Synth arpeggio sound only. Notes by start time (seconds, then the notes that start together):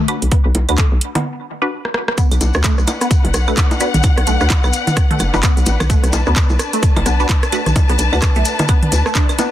0.32 B3
0.78 A3
1.15 B3
2.18 B3
2.64 A3
3.01 B3
3.48 A3
3.80 B3
4.27 A3
4.64 B3
5.11 A3
5.43 B3
5.90 A3
6.27 B3
6.73 A3
7.06 B3
7.52 A3
7.90 B3
8.36 A3
8.69 B3
9.06 A3
9.15 D4
9.39 B3